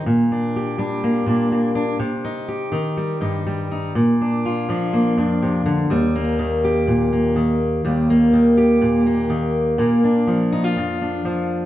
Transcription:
\new Staff \with { instrumentName = "Steel-string acoustic guitar" } { \time 4/4 \key ees \major \tempo 4 = 123 << { r8 d'8 g'8 d'8 bes8 d'8 bes8 d'8 | r8 ees'8 g'8 ees'8 g8 ees'8 g8 ees'8 | r8 d'8 f'8 d'8 bes8 d'4. | g8 bes4 g'4 bes4. |
g8 bes4 g'4 bes4. | bes8 d'4 ees'16 f'8. d'4. | } \\ { bes,4. g4 bes,4. | c4. ees4 g,4. | bes,4. f4 f,8 c8 d8 | ees,4 ees4 bes,4 ees4 |
ees,4 ees4 bes,4 ees4 | bes,4 f4 f,4 f4 | } >> }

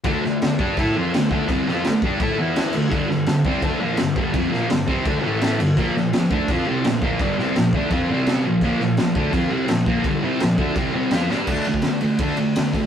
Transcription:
<<
  \new Staff \with { instrumentName = "Distorted electric guitar" } { \clef bass \time 4/4 \key d \minor \tempo 4 = 168 <d a d'>8 <d a>8 <d a>8 <g d' g'>8 <a e' a'>8 <f c' f'>8 <d a>8 <d a d'>8 | <c g c'>8 <f c' f'>8 <d a>8 <g d' g'>8 <a e' a'>8 <e b e'>4 <d a>8 | <g, d g>8 <g, d>8 <g, d>8 <c g c'>8 <d a d'>8 <bes, f bes>8 <g, d>8 <g, d g>8 | <f, c f>8 <bes, f bes>8 <g, d>8 <c g c'>8 <d a d'>8 <a, e a>4 <g, d>8 |
<bes, f bes>8 <bes, f>8 <bes, f>8 <d a d'>8 <f c' f'>8 <c g c'>8 <bes, f>8 <bes, f bes>8 | <g, d g>8 <c g c'>8 <bes, f>8 <d a d'>8 <f c' f'>8 <c g c'>4 <bes, f>8 | <bes, f bes>8 <bes, f>8 <bes, f>8 <d a d'>8 <f c' f'>8 <c g c'>8 <bes, f>8 <bes, f bes>8 | <g, d g>8 <c g c'>8 <bes, f>8 <d a d'>8 <c g c'>8 <c g c'>8 <f c' f'>8 <g d' g'>8 |
<d a d'>8 <d a>8 <d a>8 <d a>8 <d a d'>8 <d a>8 <d a>8 <d a>8 | }
  \new DrumStaff \with { instrumentName = "Drums" } \drummode { \time 4/4 <cymc bd>8 sn8 <cymc sn>8 bd8 <cymc bd>4 <cymc sn>8 bd8 | <cymc bd>8 sn8 <cymc sn>8 bd8 <cymc bd>4 <cymc sn>8 cymc8 | <cymc bd>8 sn8 <cymc sn>8 bd8 <cymc bd>4 <cymc sn>8 bd8 | <cymc bd>8 sn8 <cymc sn>8 bd8 <cymc bd>4 <cymc sn>8 cymc8 |
<cymc bd>8 sn8 <cymc sn>8 bd8 <cymc bd>4 <cymc sn>8 bd8 | <cymc bd>8 sn8 <cymc sn>8 bd8 <cymc bd>4 <cymc sn>4 | <cymc bd>8 sn8 <cymc sn>8 bd8 <cymc bd>4 <cymc sn>8 bd8 | <cymc bd>4 <cymc sn>8 bd8 <cymc bd>4 <cymc sn>8 sn8 |
<cymc bd>8 cymr16 bd16 <cymr sn>8 cymr8 <bd cymr>8 cymr8 <cymr sn>8 <bd cymr>8 | }
>>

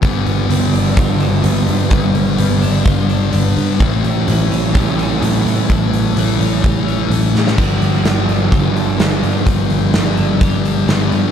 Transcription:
<<
  \new Staff \with { instrumentName = "Clean electric guitar" } { \time 4/4 \key g \mixolydian \tempo 4 = 127 b4 b8 d'8 f'8 d'8 b8 b8 | b4 b8 d'8 f'8 d'8 b8 b8 | e4 e8 cis'8 g'8 cis'8 a8 e8 | e4 e8 cis'8 g'8 cis'8 a8 e8 |
f4 f8 d'8 g'8 d'8 b8 f8 | f4 f8 d'8 g'8 d'8 b8 f8 | }
  \new Staff \with { instrumentName = "Overdriven electric guitar" } { \clef bass \time 4/4 \key g \mixolydian <g, d f g b g'>1~ | <g, d f g b g'>1 | <a, e g cis' g'>1~ | <a, e g cis' g'>1 |
<g, d f g b g'>1~ | <g, d f g b g'>1 | }
  \new Staff \with { instrumentName = "Distorted electric guitar" } { \clef bass \time 4/4 \key g \mixolydian <g, d g>4 <g, d g>4 <g, d g>4 <g, d g>4 | <g, d g>4 <g, d g>4 <g, d g>4 <g, d g>4 | <a, e a>4 <a, e a>4 <a, e a>4 <a, e a>4 | <a, e a>4 <a, e a>4 <a, e a>4 <a, e a>4 |
<g, d g>4 <g, d g>4 <g, d g>4 <g, d g>4 | <g, d g>4 <g, d g>4 <g, d g>4 <g, d g>4 | }
  \new Staff \with { instrumentName = "Picked electric bass" } { \clef bass \time 4/4 \key g \mixolydian g,,8 g,,8 g,,8 g,,8 g,,4 g,,8 g,8 | g,,8 g,,8 g,,8 g,,8 g,,4 g,,8 g,8 | a,,8 a,,8 a,,8 a,,8 a,,4 a,,8 a,8 | a,,8 a,,8 a,,8 a,,8 a,,4 a,,8 a,8 |
g,,8 g,,8 g,,8 g,,8 g,,4 g,,8 g,8 | g,,8 g,,8 g,,8 g,,8 g,,4 g,,8 g,8 | }
  \new DrumStaff \with { instrumentName = "Drums" } \drummode { \time 4/4 <hho bd>8 hho8 hho8 hho8 <hho bd>8 hho8 hho8 hho8 | <hho bd>8 hho8 hho8 hho8 <hho bd>8 hho8 hho8 hho8 | <hho bd>8 hho8 hho8 hho8 <hho bd>8 hho8 hho8 hho8 | <hho bd>8 hho8 hho8 hho8 <hho bd>8 hho8 hho8 sn16 sn16 |
<cymc hho bd>8 hho8 <hho sn>8 hho8 <hho bd>8 hho8 <hho sn>8 hho8 | <hho bd>8 hho8 <hho sn>8 hho8 <hho bd>8 hho8 <hho sn>8 hho8 | }
>>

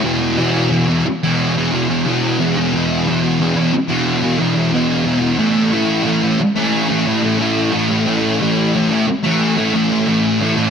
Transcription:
\new Staff \with { instrumentName = "Distorted electric guitar" } { \clef bass \time 4/4 \key e \mixolydian \tempo 4 = 90 <e, b, e>8 <e, b, e>8 <e, b, e>16 <b, e>8 <b, e>8 <b, e>16 <e, b, e>16 <b, e>16 <e, b, e>8 <e, b, e>16 <b, e>16 | <e, b, e>8 <e, b, e>8 <e, b, e>16 <b, e>8 <b, e>8 <b, e>16 <e, b, e>16 <b, e>16 <e, b, e>8 <e, b, e>16 <b, e>16 | <a, e a>8 <a, e a>8 <a, e a>16 <e a>8 <e a>8 <e a>16 <a, e a>16 <e a>16 <a, e a>8 <a, e a>16 <e a>16 | <a, e a>8 <a, e a>8 <a, e a>16 <e a>8 <e a>8 <e a>16 <a, e a>16 <e a>16 <a, e a>8 <a, e a>16 <e a>16 | }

